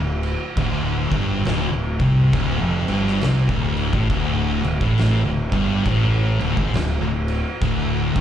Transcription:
Already playing: fingered electric bass D1, distorted electric guitar D2
0.23 crash
0.57 fingered electric bass D1, distorted electric guitar D2, kick, crash
1.11 fingered electric bass G1, distorted electric guitar G2, kick, crash
1.45 fingered electric bass D1, distorted electric guitar D2, snare, crash
1.73 fingered electric bass D1, distorted electric guitar D2
1.99 fingered electric bass C2, distorted electric guitar C3, kick, crash
2.33 fingered electric bass D1, distorted electric guitar D2, kick, crash
2.61 fingered electric bass F1, distorted electric guitar F2
2.88 fingered electric bass G1, distorted electric guitar G2, crash
3.07 snare
3.21 fingered electric bass C2, distorted electric guitar C3, snare, crash
3.49 fingered electric bass D1, distorted electric guitar D2, kick
3.77 crash
3.93 fingered electric bass A1, distorted electric guitar A2, kick
4.10 fingered electric bass D1, distorted electric guitar D2, kick, crash
4.64 fingered electric bass D1, distorted electric guitar D2, crash
4.81 fingered electric bass A1, distorted electric guitar A2, kick
4.98 snare, crash
5.24 fingered electric bass D1, distorted electric guitar D2
5.52 fingered electric bass G1, distorted electric guitar G2, kick, crash
5.86 fingered electric bass A1, distorted electric guitar A2, kick, crash
6.40 fingered electric bass D1, distorted electric guitar D2, crash
6.57 fingered electric bass G#1, distorted electric guitar G#2, kick
6.73 fingered electric bass D1, distorted electric guitar D2, snare, crash
7.00 fingered electric bass D1, distorted electric guitar D2
7.28 crash
7.62 fingered electric bass D1, distorted electric guitar D2, kick, crash
8.16 fingered electric bass G1, distorted electric guitar G2, kick, crash

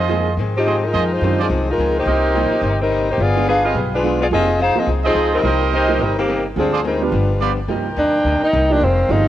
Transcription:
Already playing: upright bass F2, trumpet section C5 D#5
0.00 trumpet section F4 G#4
0.09 hollow-body jazz guitar F2 D#3 G#3 C4, grand piano F3 A#3 D#4 G#4
0.37 hollow-body jazz guitar F2 D#3 G#3 C4, upright bass G#2
0.56 saxophone section F3 C4 D#4 G4
0.66 hollow-body jazz guitar F2 D#3 G#3 C4, trumpet section F4 G#4 C5 D#5
0.84 saxophone section G#3 D#4 F4 A#4
0.94 upright bass F2, hollow-body jazz guitar F2 D#3 G#3 C4, trumpet section F4 G#4 C5 D#5
1.13 saxophone section G#3 D#4 F4 C5
1.21 hollow-body jazz guitar F2 D#3 G#3 C4, upright bass F#2, grand piano D#3 G#3 D4 G4
1.39 saxophone section F3 C4 D#4 G#4, trumpet section F4 G#4 C5 D5
1.49 upright bass C2, hollow-body jazz guitar F2 D#3 G#3 C4
1.70 saxophone section G#3 D#4 F4 A#4
1.78 upright bass C#2, hollow-body jazz guitar F2 D#3 G#3 C4
1.99 saxophone section A#3 D#4 G4 C5
2.06 upright bass C2, hollow-body jazz guitar C3 G3 A#3 D#4, trumpet section G4 A#4 C5 D#5
2.35 hollow-body jazz guitar C3 G3 A#3 D#4, grand piano F3 A#3 D#4 G4
2.61 upright bass G1, hollow-body jazz guitar C3 G3 A#3 D#4
2.81 saxophone section G3 C4 D#4 A#4
2.91 hollow-body jazz guitar C3 G3 A#3 D#4
3.09 saxophone section A#3 D#4 G4 C5
3.18 upright bass G1, hollow-body jazz guitar G3 B3 F4 G#4, saxophone section B3 F4 G#4 D5
3.36 grand piano G#3 B3 D4 F4
3.48 hollow-body jazz guitar G3 B3 F4 G#4, saxophone section D4 G#4 B4 F5
3.63 saxophone section C4 F4 G#4 D#5, trumpet section G4 G#4 B4 F5
3.74 upright bass B1, hollow-body jazz guitar G3 B3 F4 G#4
3.94 saxophone section G#3 D4 F4 B4
4.03 hollow-body jazz guitar G3 B3 F4 G#4, grand piano G#3 B3 D4 F4
4.22 saxophone section B3 F4 G#4 D5
4.31 upright bass F1, hollow-body jazz guitar F3 C4 D#4 G#4, grand piano F3 A#3 D#4 G4, saxophone section C4 F4 G#4 D#5
4.59 hollow-body jazz guitar F3 C4 D#4 G#4, saxophone section D#4 G#4 C5 F5
4.75 grand piano F3 A#3 D#4 F4, saxophone section C4 F4 G#4 D#5, muted upright bass stroke
4.87 upright bass C2, hollow-body jazz guitar F3 C4 D#4 G#4
5.04 saxophone section F3 C4 D#4 G#4, trumpet section F4 G#4 C5 D#5
5.15 upright bass C#2, hollow-body jazz guitar F3 C4 D#4 G#4
5.35 saxophone section G3 C4 D#4 A#4
5.43 upright bass C2, hollow-body jazz guitar C3 G3 A#3 D#4, grand piano F3 A#3 D#4 G4, trumpet section G4 A#4 C5 D#5
5.73 hollow-body jazz guitar C3 G3 A#3 D#4, saxophone section A#3 D#4 G4 C5
5.88 grand piano F3 A#3 D#4 A#4
5.99 upright bass G1, hollow-body jazz guitar C3 G3 A#3 D#4, saxophone section G3 C4 D#4 A#4
6.18 saxophone section D#3 A#3 C4 G4
6.28 hollow-body jazz guitar C3 G3 A#3 D#4
6.56 upright bass D2, grand piano D3 G3 C4 F4, hollow-body jazz guitar D3 G#3 C4 F4, saxophone section F3 C4 D4 G#4
6.73 trumpet section F4 G#4 C5 D5
6.84 hollow-body jazz guitar D3 G#3 C4 F4, saxophone section G3 C4 D#4 A#4
7.02 grand piano G3 B3 D4 F4, saxophone section G3 D4 F4 B4
7.12 upright bass G1, hollow-body jazz guitar G2 F3 B3 D4
7.40 hollow-body jazz guitar G2 F3 B3 D4, trumpet section F4 G4 B4 D5
7.68 upright bass C2, hollow-body jazz guitar C3 G3 A#3 D#4, saxophone section D#3 A#4 C5 G5, grand piano F3 A#3 D#4 G4
7.97 upright bass D#2, hollow-body jazz guitar C3 G3 A#3 D#4, tenor saxophone D4
8.24 upright bass D2, hollow-body jazz guitar C3 G3 A#3 D#4
8.42 tenor saxophone D#4, muted upright bass stroke
8.53 upright bass C2, hollow-body jazz guitar C3 G3 A#3 D#4
8.70 grand piano F3 A#3 D#4 G4, tenor saxophone D4
8.81 upright bass F1, hollow-body jazz guitar F2 D#3 G#3 C4, saxophone section G#3 F5, tenor saxophone C4
9.09 upright bass G1, hollow-body jazz guitar F2 D#3 G#3 C4, grand piano F3 A#3 D#4 G4, tenor saxophone D#4

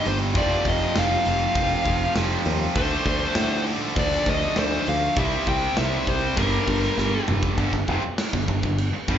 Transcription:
Already playing: distorted electric guitar G2 D3 G3 A#3 D4
0.05 fingered electric bass G1, lead electric guitar C5, open hi-hat
0.34 fingered electric bass F1, distorted electric guitar F2 C3 F3 A3, lead electric guitar D5, kick, open hi-hat
0.38 distorted electric guitar C4
0.65 fingered electric bass F1, lead electric guitar D#5, kick, open hi-hat
0.96 fingered electric bass F1, lead electric guitar F5, snare, open hi-hat
1.25 fingered electric bass F1, open hi-hat
1.55 fingered electric bass F1, distorted electric guitar F2 C3 F3, kick, open hi-hat
1.84 fingered electric bass F1, distorted electric guitar F2 C3 F3, kick, open hi-hat
2.15 fingered electric bass F1, distorted electric guitar F2 C3 F3, snare, open hi-hat
2.45 fingered electric bass D#2, open hi-hat
2.75 fingered electric bass D2, distorted electric guitar D3 F3 A3 D4, lead electric guitar C5, kick, open hi-hat
3.05 fingered electric bass D2, kick, open hi-hat
3.35 fingered electric bass A2, snare, open hi-hat
3.67 open hi-hat
3.95 fingered electric bass D2, distorted electric guitar D3 A3 D4, kick, open hi-hat
3.99 lead electric guitar D5
4.26 fingered electric bass D2, distorted electric guitar D3 A3 D4, kick, open hi-hat
4.30 lead electric guitar D#5
4.41 snare
4.56 fingered electric bass D2, distorted electric guitar D3 A3 D4, lead electric guitar C5, snare, open hi-hat
4.87 fingered electric bass D2, lead electric guitar F5, open hi-hat
5.16 fingered electric bass C2, distorted electric guitar C3 G3 C4 E4, lead electric guitar E5, kick, open hi-hat
5.47 fingered electric bass C2, lead electric guitar G5, kick, open hi-hat
5.77 fingered electric bass C2, lead electric guitar E5, snare, open hi-hat
6.07 fingered electric bass C2, lead electric guitar C5, kick, open hi-hat
6.36 fingered electric bass G1, distorted electric guitar G2 D3 G3 A#3 D4, lead electric guitar A#4, kick, open hi-hat
6.68 fingered electric bass G1, kick, open hi-hat
6.83 snare
6.98 fingered electric bass G1, snare
7.28 fingered electric bass F1, mid tom
7.43 kick
7.58 fingered electric bass G1, distorted electric guitar G2 D3, kick, crash
7.73 fingered electric bass G1, distorted electric guitar G2 D3, kick, snare
7.88 fingered electric bass F1, distorted electric guitar F2 C3, kick
8.04 muted distorted electric guitar stroke
8.18 snare, crash
8.33 fingered electric bass G1, distorted electric guitar G2 D3, kick
8.48 fingered electric bass G1, distorted electric guitar G2 D3, kick
8.63 fingered electric bass G1, distorted electric guitar G2 D3, kick
8.78 crash
8.93 muted distorted electric guitar stroke
9.08 fingered electric bass G1, distorted electric guitar G2 D3 G3, kick

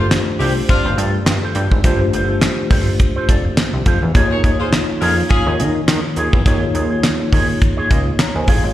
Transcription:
Already playing: analog synth bass G1, tine electric piano A3 D4 F4 G4 C5
0.00 clean electric guitar F4 A4 C5
0.11 snare, clap, closed hi-hat
0.27 muted clean electric guitar stroke
0.39 analog synth bass C2, horn section C4 D4 G4, clean electric guitar F4 A4 C5, open hi-hat
0.56 muted clean electric guitar stroke
0.68 horn section C4 D4 F4, muted clean electric guitar stroke, kick, closed hi-hat
0.85 analog synth bass G1, clean electric guitar F4 A4 C5
0.97 analog synth bass G2, clean electric guitar F4 A4 D5, closed hi-hat
1.14 muted clean electric guitar stroke
1.26 analog synth bass G2, snare, clap, closed hi-hat
1.43 clean electric guitar F4 A4 C5
1.55 analog synth bass G2, clean electric guitar F4 A4 C5, closed hi-hat
1.71 analog synth bass G#1, muted clean electric guitar stroke, kick
1.83 analog synth bass G1, tine electric piano A3 D4 F4 G4 C5, clean electric guitar F4 A4 C5, kick, closed hi-hat
2.01 muted clean electric guitar stroke
2.13 analog synth bass G1, clean electric guitar F4 A4 C5, closed hi-hat
2.29 clean electric guitar F4 A4 C5
2.42 snare, clap, closed hi-hat
2.58 muted clean electric guitar stroke
2.71 analog synth bass G1, clean electric guitar F4 A4 C5, kick, open hi-hat
2.87 muted clean electric guitar stroke
3.00 muted clean electric guitar stroke, kick, closed hi-hat
3.16 clean electric guitar F4 A4 C5
3.28 analog synth bass F1, clean electric guitar F4 A4 D5, kick, closed hi-hat
3.45 muted clean electric guitar stroke
3.57 snare, clap, closed hi-hat
3.73 analog synth bass C2, muted clean electric guitar stroke
3.86 analog synth bass F2, clean electric guitar F4 A4 C5, kick, closed hi-hat
4.02 analog synth bass E2
4.14 analog synth bass D#2, tine electric piano A#3 D#4 F4 G#4 C#5, clean electric guitar F4 G#4 C#5, kick, closed hi-hat
4.31 horn section G#4 A#4 C#5, muted clean electric guitar stroke
4.43 analog synth bass D#2, clean electric guitar F4 G#4 C#5, kick, closed hi-hat
4.60 horn section F4 G#4 C5, clean electric guitar F4 C#5
4.73 snare, clap, closed hi-hat
4.88 muted clean electric guitar stroke
5.01 analog synth bass F2, horn section C#4 F4 A#4, clean electric guitar F4 G#4 C#5, open hi-hat
5.18 muted clean electric guitar stroke
5.30 horn section C#4 F4 G#4, muted clean electric guitar stroke, kick, closed hi-hat
5.46 analog synth bass D#2, clean electric guitar F4 G#4 C#5
5.59 analog synth bass D#3, clean electric guitar F4 G#4 D#5, closed hi-hat
5.75 muted clean electric guitar stroke
5.88 analog synth bass D#3, snare, clap, closed hi-hat
6.04 muted clean electric guitar stroke
6.16 analog synth bass D#2, clean electric guitar F4 G#4 C#5, closed hi-hat
6.33 analog synth bass E2, muted clean electric guitar stroke, kick
6.46 analog synth bass D#2, tine electric piano A#3 D#4 F4 G#4 C#5, clean electric guitar F4 G#4 C#5, kick, closed hi-hat
6.62 muted clean electric guitar stroke
6.74 analog synth bass D#2, clean electric guitar F4 G#4 C#5, closed hi-hat
6.90 clean electric guitar F4 G#4 C#5
7.04 snare, clap, closed hi-hat
7.20 muted clean electric guitar stroke
7.32 analog synth bass D#2, clean electric guitar F4 G#4 C#5, kick, open hi-hat
7.48 muted clean electric guitar stroke
7.61 muted clean electric guitar stroke, kick, closed hi-hat
7.77 clean electric guitar F4 G#4 C#5
7.90 analog synth bass C#2, clean electric guitar F4 G#4 D#5, kick, closed hi-hat
8.06 muted clean electric guitar stroke
8.19 tine electric piano C#5 A#5, snare, clap, closed hi-hat
8.35 analog synth bass D#2, tine electric piano C5 G#5, muted clean electric guitar stroke
8.47 analog synth bass A1, clean electric guitar F4 G#4 C#5, tine electric piano G#4 F5, kick, open hi-hat
8.64 analog synth bass G#1, tine electric piano F4 C#5, muted clean electric guitar stroke

